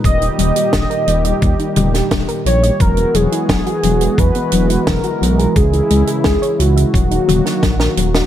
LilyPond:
<<
  \new Staff \with { instrumentName = "Soft synth lead" } { \time 4/4 \key dis \phrygian \tempo 4 = 87 dis''8 dis''2 r4 cis''8 | ais'8 gis'4. b'4 ais'4 | gis'4 gis'8 fis'2 r8 | }
  \new Staff \with { instrumentName = "Synth arpeggio sound" } { \time 4/4 \key dis \phrygian g16 dis'16 g16 g'16 g16 ais'16 g16 dis''16 g16 dis'16 g16 g'16 g16 ais'16 g16 dis''16 | fis16 b16 fis16 e'16 fis16 fis'16 fis16 gis'16 fis16 b16 fis16 e'16 fis16 fis'16 fis16 gis'16 | gis16 e'16 gis16 gis'16 gis16 cis''16 gis16 e''16 fis16 dis'16 fis16 fis'16 fis16 ais'16 fis16 dis''16 | }
  \new Staff \with { instrumentName = "Analog synth pad" } { \clef bass \time 4/4 \key dis \phrygian <ais, dis g g'>1 | <e b fis'>1 | <cis e'>2 <dis fis ais fis'>2 | }
  \new Staff \with { instrumentName = "Detuned saw bass" } { \clef bass \time 4/4 \key dis \phrygian dis,,8 dis,,8 dis,,8 dis,,8 dis,8 dis,,8 dis,,8 ais,,8 | e,,8 e,,8 e,,8 e,,8 e,8 e,,8 e,,8 b,,8 | cis,8 cis,8 cis,8 cis,8 dis,,8 dis,,8 ais,,8 dis,,8 | }
  \new DrumStaff \with { instrumentName = "Drums" } \drummode { \time 4/4 <hh bd>16 hh16 hh16 hh16 <hh bd sn>16 hh16 hh16 hh16 <hh bd>16 hh16 <hh toml>16 <hh sn>16 <hh bd sn>16 hh16 hh16 hh16 | <hh bd>16 hh16 hh16 hh16 <hh bd sn>16 hh16 hh16 hh16 <hh bd>16 hh16 hh16 hh16 <hh bd sn toml>16 hh16 hh16 hh16 | <hh bd>16 hh16 hh16 hh16 <hh bd sn>16 hh16 hh16 hh16 <hh bd>16 hh16 <hh toml>16 <hh sn>16 <hh bd sn>16 <hh sn>16 hh16 <hh sn>16 | }
>>